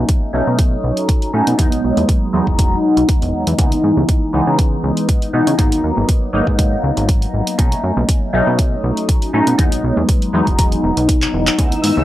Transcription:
Already playing: analog polysynth F#3 A3 C#4 D#4
0.09 kick, closed hi-hat
0.23 shaker
0.33 analog synth bass B1, analog polysynth F#3 A3 C#4 D#4
0.47 analog synth bass B2, shaker
0.59 kick, closed hi-hat
0.84 analog synth bass B1
0.97 closed hi-hat
1.09 kick, closed hi-hat
1.22 closed hi-hat
1.33 analog synth bass A2, analog polysynth F#3 A3 C#4 D#4
1.47 analog synth bass B2, closed hi-hat
1.58 analog synth bass E2, analog polysynth F#3 G#3 B3 D#4, kick, closed hi-hat, high conga, shaker
1.71 analog synth bass B1, closed hi-hat, shaker
1.84 analog synth bass B1
1.97 analog synth bass E2, closed hi-hat, high conga, shaker
2.08 kick, closed hi-hat, shaker
2.22 shaker
2.33 analog synth bass E2, analog polysynth F#3 G#3 B3 D#4
2.47 analog synth bass E1, kick
2.59 kick, closed hi-hat
2.97 analog synth bass B1, closed hi-hat
3.09 kick, closed hi-hat
3.22 analog synth bass E1, closed hi-hat
3.34 analog synth bass E2
3.47 analog synth bass E2, closed hi-hat
3.58 analog synth bass C#2, analog polysynth E3 G#3 B3 D#4, kick, closed hi-hat, high conga, shaker
3.72 closed hi-hat, shaker
3.84 analog synth bass G#2
3.97 analog synth bass C#2, high conga, shaker
4.09 kick, closed hi-hat, shaker
4.22 shaker
4.33 analog synth bass C#2, analog polysynth E3 G#3 B3 D#4
4.47 analog synth bass C#3, shaker
4.59 kick, closed hi-hat
4.84 analog synth bass C#2
4.97 closed hi-hat
5.09 kick, closed hi-hat
5.22 closed hi-hat
5.33 analog synth bass B2, analog polysynth E3 G#3 B3 D#4
5.47 analog synth bass C#3, closed hi-hat
5.58 analog synth bass G#1, analog polysynth F#3 A#3 B3 D#4, kick, closed hi-hat, high conga, shaker
5.72 analog synth bass D#2, closed hi-hat, shaker
5.84 analog synth bass D#2
5.97 analog synth bass G#1, high conga, shaker
6.08 kick, closed hi-hat, shaker
6.21 shaker
6.33 analog synth bass G#1, analog polysynth F#3 A#3 B3 D#4
6.47 analog synth bass G#2, kick
6.59 kick, closed hi-hat
6.84 analog synth bass C#2
6.97 analog synth bass G#1, closed hi-hat
7.09 kick, closed hi-hat
7.22 closed hi-hat
7.34 analog synth bass G#1
7.47 closed hi-hat, shaker
7.58 analog synth bass B1, analog polysynth F#3 A3 C#4 D#4, kick, closed hi-hat, high conga, shaker
7.72 closed hi-hat, shaker
7.84 analog synth bass F#2
7.97 analog synth bass B1, high conga, shaker
8.08 kick, closed hi-hat, shaker
8.22 shaker
8.33 analog synth bass B1, analog polysynth F#3 A3 C#4 D#4
8.47 analog synth bass B2, shaker
8.59 kick, closed hi-hat
8.84 analog synth bass B1
8.97 closed hi-hat, shaker
9.09 kick, closed hi-hat
9.22 closed hi-hat
9.33 analog synth bass A2, analog polysynth F#3 A3 C#4 D#4
9.47 analog synth bass B2, closed hi-hat
9.58 analog synth bass E2, analog polysynth F#3 G#3 B3 D#4, kick, closed hi-hat, high conga, shaker
9.72 analog synth bass B1, closed hi-hat, shaker
9.84 analog synth bass B1
9.97 analog synth bass E2, high conga, shaker
10.09 kick, closed hi-hat
10.22 closed hi-hat, shaker
10.33 analog synth bass E2, analog polysynth F#3 G#3 B3 D#4
10.47 analog synth bass E1, kick, closed hi-hat
10.59 kick, closed hi-hat
10.72 closed hi-hat
10.84 analog synth bass E1
10.97 analog synth bass B1, closed hi-hat
11.09 kick, closed hi-hat
11.22 clap, closed hi-hat
11.34 analog synth bass E1
11.47 clap, closed hi-hat
11.58 analog synth bass C#2, analog polysynth E3 G#3 B3 D#4, string machine D#4 E6, kick, closed hi-hat, high conga, shaker
11.72 closed hi-hat, shaker
11.84 analog synth bass G#2, open hi-hat
11.97 analog synth bass C#2, high conga, shaker

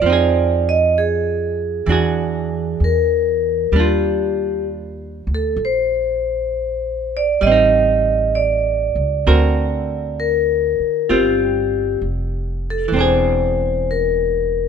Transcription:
Already playing: vibraphone D5
0.01 upright bass F2, hollow-body jazz guitar F3
0.06 hollow-body jazz guitar C4 D#4
0.13 hollow-body jazz guitar G#4
0.69 vibraphone D#5
0.98 vibraphone G#4
1.86 upright bass E2, hollow-body jazz guitar E3 D4 F#4
1.92 hollow-body jazz guitar G#4
2.80 upright bass E2
2.84 vibraphone A#4
3.72 upright bass D#2, hollow-body jazz guitar G3 D4
3.79 hollow-body jazz guitar F4, vibraphone G4
5.27 upright bass D2
5.35 vibraphone A4
5.56 upright bass A#1
5.65 vibraphone C5
7.17 vibraphone D5
7.41 upright bass A1, hollow-body jazz guitar G3, vibraphone D#5
7.47 hollow-body jazz guitar C4
7.51 hollow-body jazz guitar D#4
8.35 vibraphone D5
8.95 upright bass C#2
9.27 upright bass D2, hollow-body jazz guitar D3 C4 F#4 A#4
10.20 vibraphone A#4
10.80 muted upright bass stroke
11.09 upright bass G1, hollow-body jazz guitar G3 C4 F4, vibraphone G4
12.02 upright bass F1
12.70 vibraphone A4
12.88 hollow-body jazz guitar E3
12.92 upright bass E1, hollow-body jazz guitar C4
12.96 hollow-body jazz guitar D4, vibraphone C5
13.00 hollow-body jazz guitar G#4
13.91 vibraphone A#4

